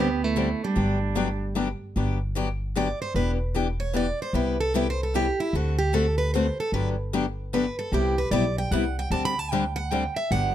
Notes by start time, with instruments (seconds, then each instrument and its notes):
Already playing: upright bass D2, soprano saxophone G4
0.00 steel-string acoustic guitar B3
0.23 steel-string acoustic guitar A3, soprano saxophone E4
0.36 steel-string acoustic guitar D3 G3 C4 D4 G4
0.63 steel-string acoustic guitar G3, soprano saxophone D4
0.75 upright bass G1, steel-string acoustic guitar D3 F#3 B3 D4 G4
1.15 steel-string acoustic guitar D3 F#3 B3 D4 G4
1.55 steel-string acoustic guitar D3 F#3 B3 D4 G4
1.96 upright bass G1, steel-string acoustic guitar D3 F#3 B3 D4 G4
2.35 steel-string acoustic guitar D3 F#3 B3 D4 G4
2.75 steel-string acoustic guitar D3 F#3 B3 D4 G4 D5
3.02 steel-string acoustic guitar C5
3.14 upright bass E1, steel-string acoustic guitar E3 B3 D4 G4 B4
3.54 steel-string acoustic guitar E3 B3 D4 G4
3.80 steel-string acoustic guitar C#5
3.93 steel-string acoustic guitar E3 B3 D4 G4 D5
4.22 steel-string acoustic guitar C5
4.33 upright bass C2, steel-string acoustic guitar C3 G3 B3 E4 G4 B4
4.60 steel-string acoustic guitar A4
4.74 steel-string acoustic guitar C3 G3 B3 E4 G4 B4
4.90 steel-string acoustic guitar C5
5.03 steel-string acoustic guitar A4
5.14 steel-string acoustic guitar C3 G3 B3 E4 G4
5.40 steel-string acoustic guitar E4
5.53 upright bass D2, steel-string acoustic guitar D3 A3 C4 F#4 A4
5.79 steel-string acoustic guitar G4
5.93 steel-string acoustic guitar D3 A3 C4 F#4 A4
6.18 steel-string acoustic guitar B4
6.34 steel-string acoustic guitar D3 A3 C4 F#4 A4 C5
6.60 steel-string acoustic guitar A4
6.72 upright bass G1, steel-string acoustic guitar D3 F#3 B3 D4 G4 B4
7.13 steel-string acoustic guitar D3 F#3 B3 D4 G4
7.53 steel-string acoustic guitar D3 F#3 B3 D4 G4 B4
7.79 steel-string acoustic guitar A4
7.92 upright bass C2, steel-string acoustic guitar C3 G3 B3 E4 G4
8.18 steel-string acoustic guitar B4
8.31 upright bass B1, steel-string acoustic guitar C3 G3 B3 E4 G4 D5
8.58 steel-string acoustic guitar G5
8.71 upright bass C2, steel-string acoustic guitar C3 G3 B3 E4 G4 F#5
8.99 steel-string acoustic guitar G5
9.10 upright bass D2, steel-string acoustic guitar D3 G3 C4 D4 G4 A5
9.25 steel-string acoustic guitar B5
9.39 steel-string acoustic guitar A5
9.51 steel-string acoustic guitar D3 G3 C4 D4 G4 G5
9.76 steel-string acoustic guitar F#5
9.91 steel-string acoustic guitar D3 G3 C4 D4 G4 G5
10.16 steel-string acoustic guitar E5
10.31 upright bass G1, steel-string acoustic guitar D3 F#3 B3 D4 G4 F#5